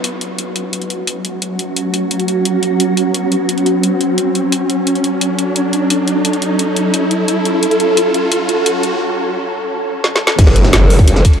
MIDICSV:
0, 0, Header, 1, 6, 480
1, 0, Start_track
1, 0, Key_signature, 3, "minor"
1, 0, Tempo, 344828
1, 1018, Time_signature, 4, 2, 24, 8
1, 15869, End_track
2, 0, Start_track
2, 0, Title_t, "Synth drone"
2, 0, Program_c, 0, 95
2, 0, Note_on_c, 0, 54, 78
2, 0, Note_on_c, 0, 61, 76
2, 0, Note_on_c, 0, 66, 88
2, 6745, Note_off_c, 0, 66, 0
2, 6776, Note_on_c, 0, 69, 89
2, 14401, Note_off_c, 0, 54, 0
2, 14401, Note_off_c, 0, 61, 0
2, 14425, Note_off_c, 0, 69, 0
2, 14458, Note_on_c, 0, 54, 81
2, 14458, Note_on_c, 0, 61, 75
2, 14458, Note_on_c, 0, 66, 91
2, 15869, Note_off_c, 0, 54, 0
2, 15869, Note_off_c, 0, 61, 0
2, 15869, Note_off_c, 0, 66, 0
2, 15869, End_track
3, 0, Start_track
3, 0, Title_t, "Wobble bass"
3, 0, Program_c, 1, 39
3, 14458, Note_on_c, 1, 30, 99
3, 15638, Note_off_c, 1, 30, 0
3, 15869, End_track
4, 0, Start_track
4, 0, Title_t, "Impact"
4, 0, Program_c, 2, 103
4, 14457, Note_on_c, 2, 60, 71
4, 15869, Note_off_c, 2, 60, 0
4, 15869, End_track
5, 0, Start_track
5, 0, Title_t, "Riser"
5, 0, Program_c, 3, 103
5, 0, Note_on_c, 3, 60, 77
5, 12537, Note_off_c, 3, 60, 0
5, 15869, End_track
6, 0, Start_track
6, 0, Title_t, "Drums"
6, 57, Note_on_c, 9, 42, 97
6, 196, Note_off_c, 9, 42, 0
6, 296, Note_on_c, 9, 42, 68
6, 435, Note_off_c, 9, 42, 0
6, 536, Note_on_c, 9, 42, 94
6, 675, Note_off_c, 9, 42, 0
6, 776, Note_on_c, 9, 42, 68
6, 915, Note_off_c, 9, 42, 0
6, 1016, Note_on_c, 9, 42, 91
6, 1135, Note_off_c, 9, 42, 0
6, 1135, Note_on_c, 9, 42, 37
6, 1255, Note_off_c, 9, 42, 0
6, 1255, Note_on_c, 9, 42, 64
6, 1395, Note_off_c, 9, 42, 0
6, 1495, Note_on_c, 9, 42, 93
6, 1634, Note_off_c, 9, 42, 0
6, 1735, Note_on_c, 9, 42, 64
6, 1875, Note_off_c, 9, 42, 0
6, 1976, Note_on_c, 9, 42, 94
6, 2115, Note_off_c, 9, 42, 0
6, 2216, Note_on_c, 9, 42, 67
6, 2355, Note_off_c, 9, 42, 0
6, 2456, Note_on_c, 9, 42, 93
6, 2595, Note_off_c, 9, 42, 0
6, 2696, Note_on_c, 9, 42, 68
6, 2836, Note_off_c, 9, 42, 0
6, 2936, Note_on_c, 9, 42, 91
6, 3056, Note_off_c, 9, 42, 0
6, 3056, Note_on_c, 9, 42, 35
6, 3176, Note_off_c, 9, 42, 0
6, 3176, Note_on_c, 9, 42, 65
6, 3315, Note_off_c, 9, 42, 0
6, 3416, Note_on_c, 9, 42, 91
6, 3555, Note_off_c, 9, 42, 0
6, 3657, Note_on_c, 9, 42, 60
6, 3796, Note_off_c, 9, 42, 0
6, 3896, Note_on_c, 9, 42, 90
6, 4036, Note_off_c, 9, 42, 0
6, 4137, Note_on_c, 9, 42, 65
6, 4276, Note_off_c, 9, 42, 0
6, 4377, Note_on_c, 9, 42, 88
6, 4516, Note_off_c, 9, 42, 0
6, 4617, Note_on_c, 9, 42, 66
6, 4756, Note_off_c, 9, 42, 0
6, 4857, Note_on_c, 9, 42, 90
6, 4977, Note_off_c, 9, 42, 0
6, 4977, Note_on_c, 9, 42, 35
6, 5097, Note_off_c, 9, 42, 0
6, 5097, Note_on_c, 9, 42, 61
6, 5236, Note_off_c, 9, 42, 0
6, 5337, Note_on_c, 9, 42, 87
6, 5476, Note_off_c, 9, 42, 0
6, 5576, Note_on_c, 9, 42, 59
6, 5716, Note_off_c, 9, 42, 0
6, 5816, Note_on_c, 9, 42, 89
6, 5956, Note_off_c, 9, 42, 0
6, 6056, Note_on_c, 9, 42, 64
6, 6196, Note_off_c, 9, 42, 0
6, 6296, Note_on_c, 9, 42, 88
6, 6435, Note_off_c, 9, 42, 0
6, 6537, Note_on_c, 9, 42, 65
6, 6676, Note_off_c, 9, 42, 0
6, 6777, Note_on_c, 9, 42, 87
6, 6896, Note_off_c, 9, 42, 0
6, 6896, Note_on_c, 9, 42, 37
6, 7017, Note_off_c, 9, 42, 0
6, 7017, Note_on_c, 9, 42, 64
6, 7156, Note_off_c, 9, 42, 0
6, 7257, Note_on_c, 9, 42, 90
6, 7396, Note_off_c, 9, 42, 0
6, 7497, Note_on_c, 9, 42, 60
6, 7636, Note_off_c, 9, 42, 0
6, 7736, Note_on_c, 9, 42, 93
6, 7876, Note_off_c, 9, 42, 0
6, 7977, Note_on_c, 9, 42, 65
6, 8116, Note_off_c, 9, 42, 0
6, 8217, Note_on_c, 9, 42, 91
6, 8356, Note_off_c, 9, 42, 0
6, 8457, Note_on_c, 9, 42, 67
6, 8596, Note_off_c, 9, 42, 0
6, 8697, Note_on_c, 9, 42, 90
6, 8816, Note_off_c, 9, 42, 0
6, 8816, Note_on_c, 9, 42, 37
6, 8937, Note_off_c, 9, 42, 0
6, 8937, Note_on_c, 9, 42, 66
6, 9076, Note_off_c, 9, 42, 0
6, 9176, Note_on_c, 9, 42, 93
6, 9315, Note_off_c, 9, 42, 0
6, 9417, Note_on_c, 9, 42, 63
6, 9556, Note_off_c, 9, 42, 0
6, 9657, Note_on_c, 9, 42, 93
6, 9796, Note_off_c, 9, 42, 0
6, 9897, Note_on_c, 9, 42, 65
6, 10036, Note_off_c, 9, 42, 0
6, 10136, Note_on_c, 9, 42, 89
6, 10275, Note_off_c, 9, 42, 0
6, 10376, Note_on_c, 9, 42, 66
6, 10516, Note_off_c, 9, 42, 0
6, 10617, Note_on_c, 9, 42, 96
6, 10737, Note_off_c, 9, 42, 0
6, 10737, Note_on_c, 9, 42, 39
6, 10856, Note_off_c, 9, 42, 0
6, 10856, Note_on_c, 9, 42, 66
6, 10996, Note_off_c, 9, 42, 0
6, 11097, Note_on_c, 9, 42, 99
6, 11236, Note_off_c, 9, 42, 0
6, 11336, Note_on_c, 9, 42, 66
6, 11476, Note_off_c, 9, 42, 0
6, 11576, Note_on_c, 9, 42, 96
6, 11715, Note_off_c, 9, 42, 0
6, 11817, Note_on_c, 9, 42, 70
6, 11956, Note_off_c, 9, 42, 0
6, 12056, Note_on_c, 9, 42, 98
6, 12196, Note_off_c, 9, 42, 0
6, 12296, Note_on_c, 9, 42, 71
6, 12435, Note_off_c, 9, 42, 0
6, 13977, Note_on_c, 9, 38, 67
6, 14116, Note_off_c, 9, 38, 0
6, 14137, Note_on_c, 9, 38, 82
6, 14276, Note_off_c, 9, 38, 0
6, 14297, Note_on_c, 9, 38, 102
6, 14436, Note_off_c, 9, 38, 0
6, 14457, Note_on_c, 9, 42, 96
6, 14457, Note_on_c, 9, 49, 106
6, 14457, Note_on_c, 9, 51, 88
6, 14458, Note_on_c, 9, 36, 121
6, 14577, Note_on_c, 9, 38, 38
6, 14578, Note_off_c, 9, 38, 0
6, 14578, Note_on_c, 9, 38, 45
6, 14596, Note_off_c, 9, 42, 0
6, 14596, Note_off_c, 9, 49, 0
6, 14596, Note_off_c, 9, 51, 0
6, 14597, Note_off_c, 9, 36, 0
6, 14697, Note_on_c, 9, 42, 71
6, 14697, Note_on_c, 9, 51, 67
6, 14717, Note_off_c, 9, 38, 0
6, 14817, Note_on_c, 9, 38, 50
6, 14818, Note_on_c, 9, 40, 36
6, 14836, Note_off_c, 9, 42, 0
6, 14836, Note_off_c, 9, 51, 0
6, 14936, Note_off_c, 9, 38, 0
6, 14936, Note_on_c, 9, 38, 115
6, 14936, Note_on_c, 9, 51, 89
6, 14937, Note_off_c, 9, 38, 0
6, 14937, Note_on_c, 9, 38, 123
6, 14937, Note_on_c, 9, 42, 101
6, 14957, Note_off_c, 9, 40, 0
6, 15075, Note_off_c, 9, 51, 0
6, 15076, Note_off_c, 9, 38, 0
6, 15076, Note_off_c, 9, 42, 0
6, 15177, Note_on_c, 9, 46, 76
6, 15177, Note_on_c, 9, 51, 72
6, 15298, Note_off_c, 9, 51, 0
6, 15298, Note_on_c, 9, 36, 110
6, 15298, Note_on_c, 9, 51, 45
6, 15316, Note_off_c, 9, 46, 0
6, 15417, Note_off_c, 9, 51, 0
6, 15417, Note_on_c, 9, 42, 100
6, 15417, Note_on_c, 9, 51, 91
6, 15437, Note_off_c, 9, 36, 0
6, 15537, Note_on_c, 9, 40, 38
6, 15556, Note_off_c, 9, 42, 0
6, 15556, Note_off_c, 9, 51, 0
6, 15657, Note_on_c, 9, 36, 63
6, 15657, Note_on_c, 9, 42, 72
6, 15657, Note_on_c, 9, 51, 72
6, 15676, Note_off_c, 9, 40, 0
6, 15776, Note_off_c, 9, 51, 0
6, 15776, Note_on_c, 9, 51, 44
6, 15796, Note_off_c, 9, 42, 0
6, 15797, Note_off_c, 9, 36, 0
6, 15869, Note_off_c, 9, 51, 0
6, 15869, End_track
0, 0, End_of_file